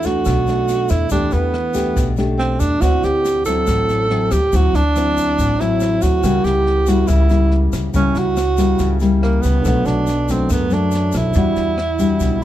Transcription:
Already playing: upright bass E2, nylon-string guitar E3, tine electric piano D4 F#4 A4 F#5
0.03 nylon-string guitar A3 D4, tenor saxophone F#4, kick, snare, shaker
0.25 upright bass B1, nylon-string guitar B2, kick, cross-stick, snare, shaker
0.47 nylon-string guitar A3 D4, snare, shaker
0.68 snare, shaker
0.89 upright bass E2, tenor saxophone E4, kick, cross-stick, snare, shaker
1.10 upright bass E2, nylon-string guitar E3 A3 D4 G4, tenor saxophone D4, kick, snare, shaker
1.31 upright bass E2, tenor saxophone B3, snare, shaker
1.54 cross-stick, snare
1.74 nylon-string guitar A3 D4 G4, kick, snare, shaker
1.96 upright bass B1, nylon-string guitar B2, kick, snare, shaker
2.17 nylon-string guitar A3 D4 G4, snare, shaker
2.39 tenor saxophone C4, cross-stick, snare
2.59 upright bass E2, tenor saxophone D4, kick, snare, shaker
2.80 upright bass D2, nylon-string guitar D3 C4, tine electric piano E4 C5 D5, tenor saxophone F#4, kick, cross-stick, snare, shaker
2.84 nylon-string guitar E4, tine electric piano F#5
3.03 upright bass D2, tenor saxophone G4, snare, shaker
3.25 snare, shaker
3.45 nylon-string guitar F#3 C4 E4, tenor saxophone A4, kick, snare, shaker
3.67 upright bass A1, nylon-string guitar A2, kick, cross-stick, snare, shaker
3.89 snare, shaker
4.10 nylon-string guitar F#3 C4 E4, snare
4.31 upright bass D2, tenor saxophone G4, kick, cross-stick, snare, shaker
4.53 upright bass D2, nylon-string guitar D3 F#3 C4 E4, tenor saxophone F#4, kick, snare, shaker
4.73 upright bass D2, tenor saxophone D4, snare, shaker
4.96 nylon-string guitar F#3 C4 E4, cross-stick, snare, shaker
5.17 kick, snare, shaker
5.39 upright bass A1, nylon-string guitar A2, kick, snare, shaker
5.60 nylon-string guitar F#3 C4 E4, tenor saxophone E4, snare, shaker
5.80 cross-stick, snare, shaker
6.02 upright bass D2, tenor saxophone F#4, kick, snare, shaker
6.21 upright bass C#2, nylon-string guitar C#3 G3, tine electric piano E4 G5, kick, cross-stick, snare, shaker
6.25 nylon-string guitar A#3 E4, tine electric piano A#4 F#5
6.44 upright bass C#2, tenor saxophone G4, snare, shaker
6.67 snare
6.86 nylon-string guitar G3 A#3 E4, tenor saxophone F#4, kick, snare, shaker
7.08 upright bass C#2, nylon-string guitar C#3, tenor saxophone E4, kick, cross-stick, snare, shaker
7.29 nylon-string guitar G3 A#3 E4, snare, shaker
7.51 snare
7.72 upright bass C#2, kick, cross-stick, snare, shaker
7.93 upright bass C#2, nylon-string guitar C#3 G3 A#3 E4, tenor saxophone C#4, kick, snare, shaker
8.15 upright bass C#2, tenor saxophone F#4, snare, shaker
8.36 cross-stick, snare, shaker
8.57 nylon-string guitar G3 A#3 E4, kick, snare, shaker
8.79 upright bass C#2, nylon-string guitar C#3, kick, snare, shaker
9.00 nylon-string guitar G3 A#3 E4, snare, shaker
9.22 tenor saxophone A#3, cross-stick, snare
9.42 upright bass C#2, tenor saxophone B3, kick, snare, shaker
9.62 upright bass B1, tine electric piano D4 A4, kick, cross-stick, snare, shaker
9.66 nylon-string guitar B2 F#3 A3 D4, tine electric piano B4 F#5
9.85 upright bass B1, tenor saxophone D4, snare, shaker
10.06 snare, shaker
10.28 nylon-string guitar F#3 A3 D4, tenor saxophone C4, kick, snare, shaker
10.50 upright bass F#2, nylon-string guitar F#2, tenor saxophone B3, kick, cross-stick, snare, shaker
10.70 nylon-string guitar F#3 A3 D4, tenor saxophone D4, snare, shaker
10.91 snare, shaker
11.12 upright bass B1, kick, cross-stick, snare, shaker
11.16 tenor saxophone E4
11.33 upright bass E2, nylon-string guitar E3 G3 D4 F#4, tine electric piano E4, kick, snare, shaker
11.37 tine electric piano D5 F#5
11.56 upright bass E2, snare, shaker
11.78 cross-stick, snare
11.99 nylon-string guitar G3 D4 F#4, kick, snare, shaker
12.20 upright bass B1, nylon-string guitar B2, kick, snare, shaker

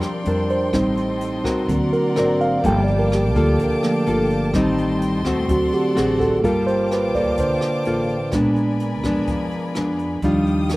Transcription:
Already playing: nylon-string guitar F3 G3 C4 D4, tine electric piano G3 C4 D4 D5, violin section A#4 D5 G5 C6
0.01 cross-stick, closed hi-hat
0.25 upright bass F2, nylon-string guitar G3 C4 D4, tine electric piano A#4, closed hi-hat
0.50 tine electric piano C5, closed hi-hat
0.72 upright bass A1, nylon-string guitar A2 G3 C4 D#4, tine electric piano G3 C4 D#4, violin section A4 D#5, kick, cross-stick, closed hi-hat
0.97 closed hi-hat
1.21 closed hi-hat
1.44 upright bass C2, nylon-string guitar C4 F#4 A#4, kick, cross-stick, closed hi-hat
1.68 upright bass D2, nylon-string guitar D3, tine electric piano F#3 A#3 C4 F#4, violin section A#4 D5 F#5, kick, closed hi-hat
1.93 tine electric piano A#4, closed hi-hat
2.16 upright bass G#1, nylon-string guitar C4 F#4 A#4, tine electric piano D5, cross-stick, closed hi-hat
2.41 tine electric piano F5, closed hi-hat
2.63 upright bass G1, tine electric piano F3 A#3 G5, nylon-string guitar G3 A#3 F4 A4, violin section F5 G5 A5 D6, kick, closed hi-hat
2.84 tine electric piano D5
2.88 closed hi-hat
2.99 tine electric piano A#4
3.12 tine electric piano G4, cross-stick, closed hi-hat
3.35 upright bass D2, nylon-string guitar A#3 F4 A4, tine electric piano A4, kick, closed hi-hat
3.59 upright bass D2, nylon-string guitar D3, kick, closed hi-hat
3.63 tine electric piano A#4
3.83 tine electric piano F3 A3 A#3, cross-stick, closed hi-hat
4.07 upright bass G1, nylon-string guitar A#3 F4 A4, closed hi-hat
4.30 closed hi-hat
4.54 upright bass A1, nylon-string guitar A2 G3 C4 D#4, tine electric piano D#3 G3 C4, violin section D#5 G5 C6, kick, cross-stick, closed hi-hat
4.78 closed hi-hat
5.01 closed hi-hat
5.25 upright bass D#2, nylon-string guitar A3 C4 F#4, kick, cross-stick, closed hi-hat
5.48 upright bass D2, nylon-string guitar D3, tine electric piano F#3 A3 C4 F#4, violin section A4 D5 F#5, kick, closed hi-hat
5.72 tine electric piano G4, closed hi-hat
5.95 upright bass A1, nylon-string guitar A3 C4 F#4, tine electric piano G#4, cross-stick, closed hi-hat
6.20 tine electric piano A4, kick, closed hi-hat
6.41 upright bass G1, nylon-string guitar G3 A#3, tine electric piano A#3 F4 A4, kick, closed hi-hat
6.45 nylon-string guitar F4 A4, tine electric piano A#4, violin section F5 G5 A5 D6
6.67 tine electric piano C5, closed hi-hat
6.91 tine electric piano B4, cross-stick, closed hi-hat
7.15 upright bass D2, nylon-string guitar A#3 F4 A4, tine electric piano D5, kick, closed hi-hat
7.37 upright bass D2, nylon-string guitar D3, tine electric piano C5, kick, closed hi-hat
7.61 cross-stick, closed hi-hat
7.85 upright bass A1, nylon-string guitar A#3 F4 A4, closed hi-hat
8.09 closed hi-hat
8.32 upright bass A#1, nylon-string guitar A#2 G#3 B3 D4, tine electric piano G#3 B3 D4, violin section A#4 D5 G#5 B5, kick, cross-stick, closed hi-hat
8.56 closed hi-hat
8.80 closed hi-hat
9.04 upright bass F2, nylon-string guitar G#3 B3 D4, kick, cross-stick, closed hi-hat
9.27 upright bass F2, nylon-string guitar F3, kick, closed hi-hat
9.51 closed hi-hat
9.75 upright bass F2, nylon-string guitar G#3 B3 D4, cross-stick, closed hi-hat
9.99 closed hi-hat
10.22 upright bass D#2, nylon-string guitar D#3 G3 D4 F4, tine electric piano F3 G3 D4, violin section D4 F5 G5 D#6, kick, closed hi-hat
10.46 closed hi-hat
10.69 cross-stick, closed hi-hat

